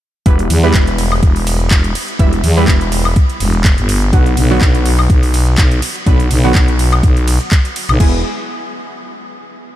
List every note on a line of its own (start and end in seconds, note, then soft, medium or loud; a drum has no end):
0.26 0.48 E1 loud
0.26 0.60 G3 medium
0.26 0.60 B3 medium
0.26 0.60 E4 medium
0.26 0.60 B4 medium
0.26 kick loud
0.26 closed hi-hat medium
0.39 closed hi-hat medium
0.50 0.73 E2 loud
0.50 open hi-hat loud
0.50 ride medium
0.63 2.17 G3 loud
0.63 2.17 B3 medium
0.63 2.17 E4 medium
0.63 2.17 B4 loud
0.74 1.21 E1 loud
0.74 kick loud
0.74 clap loud
0.74 closed hi-hat medium
0.87 closed hi-hat medium
0.98 open hi-hat loud
0.98 ride medium
1.12 high woodblock medium
1.23 1.69 E1 loud
1.23 kick loud
1.23 closed hi-hat medium
1.36 open hi-hat medium
1.47 open hi-hat loud
1.47 ride medium
1.60 closed hi-hat soft
1.71 1.93 E1 loud
1.71 kick loud
1.71 clap loud
1.71 closed hi-hat medium
1.84 closed hi-hat medium
1.95 open hi-hat loud
1.95 ride medium
2.09 closed hi-hat soft
2.19 2.42 E1 loud
2.19 2.32 G3 medium
2.19 2.32 B3 medium
2.19 2.32 E4 medium
2.19 2.32 E5 medium
2.19 kick loud
2.19 closed hi-hat medium
2.33 closed hi-hat medium
2.44 2.66 E2 loud
2.44 open hi-hat loud
2.44 ride medium
2.57 2.74 G3 medium
2.57 2.74 B3 medium
2.57 2.74 E4 medium
2.57 2.74 B4 loud
2.68 3.14 E1 loud
2.68 kick loud
2.68 clap loud
2.68 closed hi-hat medium
2.81 closed hi-hat medium
2.92 open hi-hat loud
2.92 ride medium
3.05 high woodblock medium
3.16 kick loud
3.16 closed hi-hat medium
3.29 closed hi-hat medium
3.40 3.76 E1 loud
3.40 open hi-hat loud
3.40 ride medium
3.54 closed hi-hat soft
3.64 kick loud
3.64 clap loud
3.64 closed hi-hat medium
3.78 4.11 G1 loud
3.78 closed hi-hat medium
3.89 open hi-hat loud
3.89 ride medium
4.02 closed hi-hat soft
4.13 4.35 B1 loud
4.13 4.47 D3 medium
4.13 4.47 F#3 medium
4.13 4.47 B3 medium
4.13 4.47 F#4 medium
4.13 kick loud
4.13 closed hi-hat medium
4.26 closed hi-hat medium
4.37 4.60 B1 loud
4.37 open hi-hat loud
4.37 ride medium
4.50 6.04 D3 loud
4.50 6.04 F#3 medium
4.50 6.04 B3 medium
4.50 6.04 F#4 loud
4.61 5.08 B1 loud
4.61 kick loud
4.61 clap loud
4.61 closed hi-hat medium
4.75 closed hi-hat medium
4.86 open hi-hat loud
4.86 ride medium
4.99 high woodblock medium
5.10 5.56 B1 loud
5.10 kick loud
5.10 closed hi-hat medium
5.23 open hi-hat medium
5.34 open hi-hat loud
5.34 ride medium
5.47 closed hi-hat soft
5.58 5.81 B1 loud
5.58 kick loud
5.58 clap loud
5.58 closed hi-hat medium
5.71 closed hi-hat medium
5.82 open hi-hat loud
5.82 ride medium
5.95 closed hi-hat soft
6.06 6.29 B1 loud
6.06 6.19 D3 medium
6.06 6.19 F#3 medium
6.06 6.19 B3 medium
6.06 6.19 B4 medium
6.06 kick loud
6.06 closed hi-hat medium
6.20 closed hi-hat medium
6.31 6.53 B1 loud
6.31 open hi-hat loud
6.31 ride medium
6.44 6.61 D3 medium
6.44 6.61 F#3 medium
6.44 6.61 B3 medium
6.44 6.61 F#4 loud
6.55 7.02 B1 loud
6.55 kick loud
6.55 clap loud
6.55 closed hi-hat medium
6.68 closed hi-hat medium
6.79 open hi-hat loud
6.79 ride medium
6.93 closed hi-hat soft
6.93 high woodblock medium
7.03 7.39 B1 loud
7.03 kick loud
7.03 closed hi-hat medium
7.17 closed hi-hat medium
7.28 open hi-hat loud
7.28 ride medium
7.41 closed hi-hat soft
7.51 kick loud
7.51 clap loud
7.51 closed hi-hat medium
7.65 closed hi-hat medium
7.76 open hi-hat loud
7.76 ride medium
7.89 7.98 B1 loud
7.89 closed hi-hat soft
7.89 high woodblock medium
8.00 8.23 E1 loud
8.00 8.19 G#3 medium
8.00 8.19 B3 medium
8.00 8.19 E4 medium
8.00 8.19 G#4 medium
8.00 kick loud
8.00 crash medium